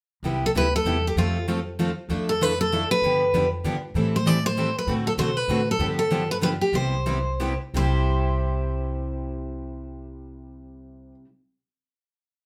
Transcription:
0.23 C2 C3 G3 B3 E4 G4
0.46 A4
0.54 D2 C3 G3 B3 E4 G4 B4
0.76 A4
0.84 E2 C3 G3 B3 E4 G4
1.07 G4
1.16 F2 F3 A3 C4 F4 A4
1.48 F3 A3 C4 F4 A4
1.79 F3 A3 C4 F4 A4
2.09 F2 F3 A3 D4 E4 A4
2.29 A4
2.41 F3 A3 D4 E4 A4 B4
2.61 A4
2.72 F3 A3 D4 E4 A4
2.91 B4
3.02 G2 D3 F3 B3 D4 G4
3.33 F2 D3 F3 B3 D4 G4
3.64 G2 D3 F3 B3 D4 G4
3.94 A2 E3 G3 C4 E4 A4
4.16 C5
4.26 E3 G3 C4 E4 A4 D5
4.46 C5
4.57 E3 G3 C4 E4 A4
4.79 B4
4.87 A2 D3 A3 C4 F#4 A4
5.07 A4
5.17 B2 D3 A3 C4 F#4 A4 C5
5.37 B4
5.48 A2 D3 A3 C4 F#4 A4
5.71 A4
5.79 G2 D3 F3 B3 D4 G4
5.99 A4
6.11 D3 F3 B3 D4 G4
6.31 B4
6.41 D3 F3 B3 D4 G4 B4
6.61 G4
6.72 C2 C3 G3 B3 E4 G4 C5
7.06 C3 G3 B3 E4 G4
7.40 C3 G3 B3 E4 G4
7.74 C2 C3 G3 E4 C5
7.78 G4

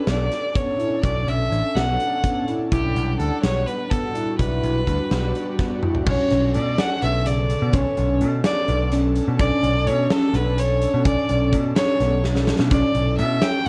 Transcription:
0.07 B1 B3 D5, snare, closed hi-hat
0.32 snare, closed hi-hat
0.55 B3 C#4 D4 A4 C#5, kick, closed hi-hat
0.79 E4, closed hi-hat
1.03 B1 F#4 D5, kick, closed hi-hat
1.15 C#4 D4 A4
1.27 B1 E5, closed hi-hat
1.51 A1 C#4 D4 A4, closed hi-hat
1.75 B1 B3 C#4 D4 A4 F#5, snare, closed hi-hat
1.99 C#4 D4 A4, closed hi-hat
2.23 B3 C#4 D4 A4, kick, closed hi-hat
2.48 E4, closed hi-hat
2.71 B1 G3 D4 E4 G4 F#5, kick, closed hi-hat
2.96 B1, closed hi-hat
3.19 D2 D4 A4, closed hi-hat
3.42 B1 B3 C#5, snare, closed hi-hat
3.66 B4, closed hi-hat
3.90 G3 B3 D4 F#4 A4, kick, closed hi-hat
4.15 E4, closed hi-hat
4.38 B1 E4 B4, kick, closed hi-hat
4.51 G3 D4 F#4
4.63 B1, closed hi-hat
4.87 D2 G3 D4 F#4, kick, closed hi-hat
5.11 B1 G3 B3 D4 F#4, snare, closed hi-hat
5.35 G3 D4 F#4, closed hi-hat
5.59 G3 B3 D4 F#4, kick, snare
5.83 E4, mid tom
5.95 floor tom
6.06 B1 C#4 C#5, kick, crash
6.30 B1 C#4 D4 A4, snare, closed hi-hat
6.54 B2 D5, closed hi-hat
6.78 C#4 D4 A4 F#5, snare, closed hi-hat
7.02 B1 B3 E5, closed hi-hat
7.26 C#3 D3 B3 A4 D5, closed hi-hat
7.49 closed hi-hat
7.62 B2
7.73 B1 C#4 C#5, kick, closed hi-hat
7.97 B1 C#4 D4 A4, closed hi-hat
8.21 B2, closed hi-hat
8.44 B3 C#4 D4 A4 D5, snare, closed hi-hat
8.68 B1 B3, closed hi-hat
8.92 C#4 D4 A4, snare, closed hi-hat
9.16 closed hi-hat
9.28 B2
9.39 B1 C#4 D5, kick, closed hi-hat
9.63 B1 C#4 D4 A4, closed hi-hat
9.87 B2 C#5, closed hi-hat
10.10 C#4 D4 A4, snare, closed hi-hat
10.34 B1 B3 B4, closed hi-hat
10.57 C#4 D4 A4 C#5, closed hi-hat
10.82 closed hi-hat
10.94 B2
11.05 B1 C#4 D5, kick, closed hi-hat
11.29 B1 C#4 D4 A4, closed hi-hat
11.53 B2, kick, closed hi-hat
11.76 C#4 D4 A4 C#5, snare, closed hi-hat
12.00 B1 B3, snare, closed hi-hat
12.24 C#4 D4 A4, snare
12.36 snare
12.47 snare
12.59 B2, snare
12.71 B1 C#4 D5, kick, closed hi-hat
12.95 B1 C#4 E4 A4, closed hi-hat
13.18 B2 E5, closed hi-hat
13.42 C#4 E4 A4 G5, snare, closed hi-hat
13.65 F#5

